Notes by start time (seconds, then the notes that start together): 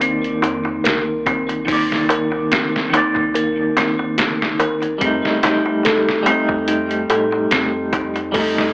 Already playing: C2 D#3 A#3 D5
0.01 C4, closed hi-hat, darbuka tek
0.24 closed hi-hat
0.42 F2 D#4, closed hi-hat, darbuka tek
0.65 darbuka tek
0.84 C2 A#4, snare, closed hi-hat, darbuka tek
1.26 C4, kick, closed hi-hat, darbuka tek
1.49 closed hi-hat, darbuka tek
1.65 D#3 A#3 D#4, kick, open hi-hat, darbuka tek
1.73 D5
1.92 snare
2.09 A#4, closed hi-hat, darbuka tek
2.32 darbuka tek
2.51 C4, snare, closed hi-hat, darbuka tek
2.76 snare
2.90 D#3 A#3 D#4, closed hi-hat, darbuka tek
2.97 D5
3.15 C2, kick, darbuka tek
3.34 A#4, closed hi-hat, darbuka tek
3.77 G1 C4, snare, closed hi-hat, darbuka tek
3.99 G1, darbuka tek
4.18 D#4, snare, closed hi-hat, darbuka tek
4.42 snare
4.59 A#4, closed hi-hat, darbuka tek
4.82 G1, closed hi-hat, darbuka tek
4.98 F2 G3 A3 C4, kick, closed hi-hat, darbuka tek
5.05 D#4
5.25 snare
5.43 D#4, snare, closed hi-hat, darbuka tek
5.66 darbuka tek
5.83 A4, snare, closed hi-hat, darbuka tek
6.09 snare
6.23 G3 A3 C4, closed hi-hat, darbuka tek
6.30 D#4
6.49 F2, kick, darbuka tek
6.68 D#4, closed hi-hat, darbuka tek
6.91 closed hi-hat
7.10 A2 A4, closed hi-hat, darbuka tek
7.32 darbuka tek
7.51 F2 C4, snare, closed hi-hat, darbuka tek
7.93 D#4, kick, closed hi-hat, darbuka tek
8.16 closed hi-hat, darbuka tek
8.32 G3 A3 A4, kick, open hi-hat, darbuka tek
8.39 D#4
8.58 snare